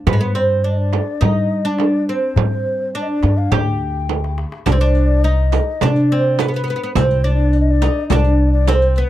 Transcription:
0.07 0.98 G2 medium
0.07 0.14 B3 medium
0.07 0.20 B4 medium
0.07 frame drum medium
0.07 darbuka dum medium
0.13 0.20 G#3 medium
0.21 0.36 B3 medium
0.21 0.37 B4 medium
0.35 0.64 C4 medium
0.35 0.41 D5 medium
0.40 0.65 C5 medium
0.64 1.20 D4 medium
0.64 0.72 D5 medium
0.70 0.79 D#5 medium
0.78 1.23 D5 medium
0.93 darbuka tek medium
0.93 frame drum medium
1.21 2.13 G3 medium
1.21 1.65 D#4 medium
1.21 1.67 D#5 medium
1.21 darbuka dum medium
1.21 frame drum medium
1.36 darbuka ka soft
1.65 2.09 D4 medium
1.65 2.08 D5 medium
1.78 darbuka tek medium
1.78 frame drum medium
2.07 2.97 C4 medium
2.07 2.90 C5 medium
2.07 darbuka ka soft
2.36 3.05 G3 medium
2.36 darbuka dum medium
2.36 frame drum medium
2.65 darbuka ka soft
2.79 darbuka ka soft
2.94 3.51 D4 medium
2.94 3.03 D5 medium
2.94 darbuka ka soft
3.02 3.10 D#5 medium
3.08 3.39 D5 medium
3.08 darbuka ka soft
3.23 3.46 G2 medium
3.23 darbuka tek medium
3.23 frame drum medium
3.37 3.53 F5 medium
3.51 4.43 D2 medium
3.51 4.34 G4 medium
3.51 4.37 G5 medium
3.51 darbuka dum medium
3.51 frame drum medium
3.67 darbuka ka soft
4.09 darbuka tek soft
4.09 frame drum medium
4.24 darbuka ka medium
4.38 darbuka tek medium
4.52 darbuka ka medium
4.66 5.57 C2 medium
4.66 4.72 D4 medium
4.66 4.80 D5 medium
4.66 riq medium
4.66 frame drum medium
4.72 4.80 C4 medium
4.80 5.24 D4 medium
4.80 5.26 D5 medium
4.80 riq soft
4.95 riq soft
5.24 5.82 D#4 medium
5.24 5.81 D#5 medium
5.24 riq soft
5.52 riq soft
5.52 frame drum medium
5.81 6.72 C3 medium
5.81 6.09 D4 medium
5.81 6.41 D5 medium
5.81 5.86 D#5 medium
5.81 riq medium
5.81 frame drum medium
5.96 riq soft
6.12 6.37 C4 medium
6.39 6.47 B3 medium
6.39 6.47 B4 medium
6.39 riq soft
6.39 frame drum medium
6.46 6.55 B3 medium
6.46 6.54 G#4 medium
6.52 6.94 B4 medium
6.52 riq soft
6.56 6.62 B3 medium
6.64 6.69 B3 medium
6.68 6.75 B3 medium
6.68 riq soft
6.76 6.82 B3 medium
6.84 6.91 B3 medium
6.95 7.86 C2 medium
6.95 7.24 C4 medium
6.95 7.26 C5 medium
6.95 riq medium
6.95 frame drum medium
7.11 riq soft
7.24 7.81 D4 medium
7.24 7.60 D5 medium
7.24 riq soft
7.53 riq soft
7.60 7.67 D#5 medium
7.67 8.09 D5 medium
7.67 7.72 D#5 medium
7.82 8.11 D#4 medium
7.82 riq soft
7.82 frame drum medium
8.09 9.01 C2 medium
8.09 8.68 D4 medium
8.09 8.50 D5 medium
8.09 riq medium
8.09 frame drum medium
8.25 riq soft
8.53 8.70 D5 medium
8.67 8.97 C4 medium
8.67 8.98 C5 medium
8.67 riq medium
8.67 frame drum medium
8.82 riq soft
8.96 9.10 B3 medium
8.96 9.10 B4 medium
8.96 riq soft

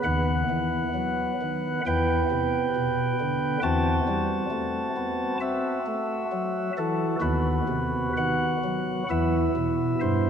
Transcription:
0.04 0.44 D#2 medium
0.04 0.43 D#3 medium
0.04 1.81 B3 medium
0.04 1.81 B4 medium
0.04 1.81 F#5 loud
0.49 0.88 E3 medium
0.94 1.33 F#3 medium
1.41 1.80 D#3 medium
1.86 2.24 E2 medium
1.86 2.25 E3 medium
1.86 3.60 B3 medium
1.86 3.60 B4 medium
1.86 3.59 G5 loud
2.31 2.68 C3 medium
2.75 3.13 B2 medium
3.20 3.57 D3 medium
3.63 4.01 E2 medium
3.63 4.01 E3 medium
3.63 5.38 C4 medium
3.63 7.18 F#4 medium
3.63 5.38 A5 loud
4.08 4.45 G3 medium
4.50 4.89 A3 medium
4.96 5.35 B3 medium
5.40 5.79 C4 medium
5.40 6.73 E5 loud
5.86 6.25 A3 medium
6.32 6.70 F#3 medium
6.78 7.16 E3 medium
6.78 7.16 A4 loud
7.21 7.61 D#2 medium
7.21 7.61 D#3 medium
7.21 9.04 B3 medium
7.21 9.04 F#4 medium
7.21 8.13 B4 loud
7.68 8.09 C3 medium
8.17 8.56 D#3 medium
8.17 9.07 F#5 loud
8.64 9.03 F#3 medium
9.09 9.49 E2 medium
9.09 9.49 E3 medium
9.09 10.30 B3 medium
9.09 10.30 E4 medium
9.09 9.99 E5 loud
9.56 9.95 B2 medium
10.01 10.30 G2 medium
10.01 10.30 C5 loud

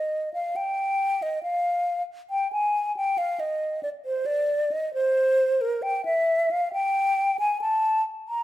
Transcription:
0.00 0.32 D#5 medium
0.34 0.58 F5 medium
0.56 1.24 G5 medium
1.22 1.42 D#5 medium
1.43 2.03 F5 medium
2.30 2.51 G5 medium
2.52 2.96 G#5 medium
2.97 3.20 G5 medium
3.18 3.41 F5 medium
3.40 3.83 D#5 medium
3.83 3.89 D5 medium
4.05 4.27 C5 medium
4.26 4.73 D5 medium
4.71 4.93 D#5 medium
4.94 5.63 C5 medium
5.61 5.84 A#4 medium
5.82 6.05 G5 medium
6.05 6.52 E5 medium
6.51 6.73 F5 medium
6.73 7.37 G5 medium
7.39 7.60 G#5 medium
7.61 8.02 A5 medium
8.29 8.43 A#5 medium

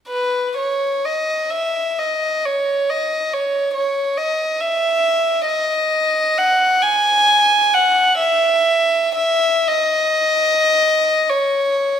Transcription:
0.08 0.52 B4 soft
0.57 1.04 C#5 soft
1.05 1.52 D#5 soft
1.51 1.98 E5 soft
1.99 2.43 D#5 soft
2.46 2.88 C#5 soft
2.90 3.32 D#5 soft
3.33 3.73 C#5 soft
3.74 4.15 C#5 soft
4.18 4.59 D#5 soft
4.60 5.47 E5 soft
5.47 6.36 D#5 medium
6.38 6.82 F#5 soft
6.82 7.72 G#5 medium
7.74 8.19 F#5 medium
8.20 9.13 E5 medium
9.15 9.65 E5 medium
9.68 11.30 D#5 medium
11.29 12.00 C#5 soft

